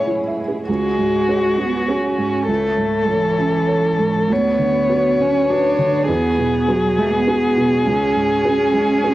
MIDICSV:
0, 0, Header, 1, 5, 480
1, 0, Start_track
1, 0, Tempo, 604230
1, 540, Time_signature, 3, 2, 24, 8
1, 3893, Tempo, 591133
1, 7338, End_track
2, 0, Start_track
2, 0, Title_t, "Violin"
2, 0, Program_c, 0, 40
2, 552, Note_on_c, 0, 66, 38
2, 1949, Note_off_c, 0, 66, 0
2, 1987, Note_on_c, 0, 69, 38
2, 3432, Note_on_c, 0, 73, 40
2, 3444, Note_off_c, 0, 69, 0
2, 4854, Note_off_c, 0, 73, 0
2, 4858, Note_on_c, 0, 68, 46
2, 7338, Note_off_c, 0, 68, 0
2, 7338, End_track
3, 0, Start_track
3, 0, Title_t, "String section"
3, 0, Program_c, 1, 48
3, 0, Note_on_c, 1, 61, 35
3, 0, Note_on_c, 1, 64, 37
3, 0, Note_on_c, 1, 68, 36
3, 510, Note_off_c, 1, 64, 0
3, 533, Note_off_c, 1, 68, 0
3, 543, Note_off_c, 1, 61, 0
3, 543, Note_on_c, 1, 68, 34
3, 545, Note_on_c, 1, 66, 35
3, 545, Note_on_c, 1, 73, 34
3, 1944, Note_off_c, 1, 68, 0
3, 1945, Note_off_c, 1, 66, 0
3, 1972, Note_on_c, 1, 69, 36
3, 1975, Note_on_c, 1, 64, 36
3, 3415, Note_off_c, 1, 69, 0
3, 3415, Note_on_c, 1, 66, 39
3, 3415, Note_on_c, 1, 71, 38
3, 3416, Note_off_c, 1, 64, 0
3, 4827, Note_off_c, 1, 73, 0
3, 4858, Note_on_c, 1, 56, 43
3, 6301, Note_off_c, 1, 71, 0
3, 6305, Note_on_c, 1, 80, 51
3, 7338, Note_off_c, 1, 56, 0
3, 7338, Note_off_c, 1, 66, 0
3, 7338, Note_off_c, 1, 80, 0
3, 7338, End_track
4, 0, Start_track
4, 0, Title_t, "Felt piano"
4, 0, Program_c, 2, 0
4, 0, Control_c, 2, 64, 127
4, 0, Note_on_c, 2, 45, 32
4, 0, Note_on_c, 2, 68, 24
4, 0, Note_on_c, 2, 76, 28
4, 0, Note_on_c, 2, 78, 21
4, 58, Note_on_c, 2, 64, 25
4, 154, Note_off_c, 2, 76, 0
4, 220, Note_on_c, 2, 76, 28
4, 316, Note_off_c, 2, 64, 0
4, 384, Note_off_c, 2, 68, 0
4, 384, Note_on_c, 2, 68, 25
4, 478, Note_off_c, 2, 76, 0
4, 512, Note_off_c, 2, 45, 0
4, 542, Note_off_c, 2, 68, 0
4, 547, Note_on_c, 2, 37, 41
4, 554, Control_c, 2, 64, 0
4, 561, Note_off_c, 2, 78, 0
4, 685, Control_c, 2, 64, 127
4, 782, Note_on_c, 2, 44, 30
4, 1019, Note_on_c, 2, 68, 29
4, 1022, Note_on_c, 2, 73, 34
4, 1163, Note_off_c, 2, 44, 0
4, 1233, Note_off_c, 2, 68, 0
4, 1235, Note_off_c, 2, 73, 0
4, 1254, Note_on_c, 2, 66, 31
4, 1497, Note_on_c, 2, 68, 30
4, 1501, Note_on_c, 2, 73, 31
4, 1639, Note_off_c, 2, 66, 0
4, 1712, Note_off_c, 2, 68, 0
4, 1714, Note_off_c, 2, 73, 0
4, 1734, Note_on_c, 2, 44, 33
4, 1946, Note_off_c, 2, 37, 0
4, 1972, Note_on_c, 2, 37, 40
4, 1974, Note_off_c, 2, 44, 0
4, 1988, Control_c, 2, 64, 0
4, 2104, Control_c, 2, 64, 127
4, 2206, Note_on_c, 2, 44, 32
4, 2449, Note_on_c, 2, 69, 30
4, 2456, Note_on_c, 2, 73, 34
4, 2590, Note_off_c, 2, 44, 0
4, 2664, Note_off_c, 2, 69, 0
4, 2668, Note_off_c, 2, 73, 0
4, 2689, Note_on_c, 2, 61, 35
4, 2922, Note_on_c, 2, 69, 30
4, 2925, Note_on_c, 2, 73, 32
4, 3073, Note_off_c, 2, 61, 0
4, 3144, Note_off_c, 2, 69, 0
4, 3146, Note_off_c, 2, 73, 0
4, 3167, Note_on_c, 2, 44, 33
4, 3383, Note_off_c, 2, 37, 0
4, 3412, Note_on_c, 2, 38, 44
4, 3414, Note_off_c, 2, 44, 0
4, 3433, Control_c, 2, 64, 0
4, 3551, Control_c, 2, 64, 127
4, 3646, Note_on_c, 2, 50, 33
4, 3886, Note_on_c, 2, 66, 34
4, 3890, Note_on_c, 2, 71, 37
4, 4034, Note_off_c, 2, 50, 0
4, 4107, Note_off_c, 2, 66, 0
4, 4109, Note_off_c, 2, 71, 0
4, 4131, Note_on_c, 2, 61, 36
4, 4378, Note_on_c, 2, 66, 33
4, 4381, Note_on_c, 2, 71, 39
4, 4518, Note_off_c, 2, 61, 0
4, 4594, Note_off_c, 2, 66, 0
4, 4595, Note_off_c, 2, 71, 0
4, 4611, Note_on_c, 2, 50, 40
4, 4823, Note_off_c, 2, 38, 0
4, 4855, Note_off_c, 2, 50, 0
4, 4855, Note_on_c, 2, 40, 46
4, 4872, Control_c, 2, 64, 0
4, 5005, Control_c, 2, 64, 127
4, 5098, Note_on_c, 2, 47, 36
4, 5341, Note_on_c, 2, 66, 40
4, 5343, Note_on_c, 2, 68, 40
4, 5486, Note_off_c, 2, 47, 0
4, 5559, Note_off_c, 2, 66, 0
4, 5560, Note_off_c, 2, 68, 0
4, 5583, Note_on_c, 2, 56, 41
4, 5818, Note_on_c, 2, 66, 38
4, 5821, Note_on_c, 2, 68, 43
4, 5967, Note_off_c, 2, 56, 0
4, 6036, Note_off_c, 2, 66, 0
4, 6038, Note_off_c, 2, 68, 0
4, 6062, Note_on_c, 2, 47, 40
4, 6268, Note_off_c, 2, 40, 0
4, 6298, Note_on_c, 2, 37, 54
4, 6301, Note_off_c, 2, 47, 0
4, 6316, Control_c, 2, 64, 0
4, 6463, Control_c, 2, 64, 127
4, 6535, Note_on_c, 2, 44, 41
4, 6775, Note_on_c, 2, 66, 42
4, 6776, Note_on_c, 2, 68, 45
4, 6918, Note_off_c, 2, 44, 0
4, 6991, Note_off_c, 2, 66, 0
4, 6991, Note_off_c, 2, 68, 0
4, 7004, Note_on_c, 2, 56, 43
4, 7253, Note_on_c, 2, 66, 41
4, 7253, Note_on_c, 2, 68, 46
4, 7338, Note_off_c, 2, 37, 0
4, 7338, Note_off_c, 2, 56, 0
4, 7338, Note_off_c, 2, 66, 0
4, 7338, Note_off_c, 2, 68, 0
4, 7338, End_track
5, 0, Start_track
5, 0, Title_t, "Cello"
5, 0, Program_c, 3, 42
5, 0, Note_on_c, 3, 56, 36
5, 355, Note_off_c, 3, 56, 0
5, 541, Note_on_c, 3, 56, 54
5, 1258, Note_on_c, 3, 59, 54
5, 1270, Note_off_c, 3, 56, 0
5, 1503, Note_on_c, 3, 61, 47
5, 1515, Note_off_c, 3, 59, 0
5, 1974, Note_off_c, 3, 61, 0
5, 1979, Note_on_c, 3, 57, 53
5, 2452, Note_on_c, 3, 52, 60
5, 2464, Note_off_c, 3, 57, 0
5, 3405, Note_off_c, 3, 52, 0
5, 3409, Note_on_c, 3, 59, 65
5, 4145, Note_on_c, 3, 61, 60
5, 4157, Note_off_c, 3, 59, 0
5, 4377, Note_on_c, 3, 62, 69
5, 4389, Note_off_c, 3, 61, 0
5, 4851, Note_on_c, 3, 59, 64
5, 4863, Note_off_c, 3, 62, 0
5, 5338, Note_on_c, 3, 54, 64
5, 5350, Note_off_c, 3, 59, 0
5, 5583, Note_on_c, 3, 57, 70
5, 5595, Note_off_c, 3, 54, 0
5, 5699, Note_on_c, 3, 59, 62
5, 5711, Note_off_c, 3, 57, 0
5, 6290, Note_off_c, 3, 59, 0
5, 6295, Note_on_c, 3, 61, 86
5, 7338, Note_off_c, 3, 61, 0
5, 7338, End_track
0, 0, End_of_file